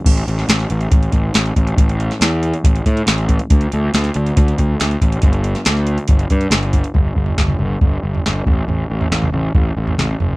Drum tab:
CC |x---------------|----------------|----------------|----------------|
HH |-xx-xxxxxxx-xxxx|xxxxx-xxxxxxxxxx|xxx-xxxxxxx-xxxx|xxxxx-xxxxxxxxxx|
SD |---ooo------o---|---oo-------o---|----oo------o---|---ooo------o---|
T2 |----------------|----------------|----------------|----------------|
FT |----------------|----------------|----------------|----------------|
BD |o-------o-o---o-|o-------o-o---o-|o-------o-o---o-|o-------o-o---o-|

CC |----------------|----------------|
HH |----------------|----------------|
SD |----o-------o---|----o-------o---|
T2 |-----oo---------|-----oo-----o-o-|
FT |o--o-o--o--o--o-|o--o-o--o--o--o-|
BD |o-o-o---o-----o-|--------o-------|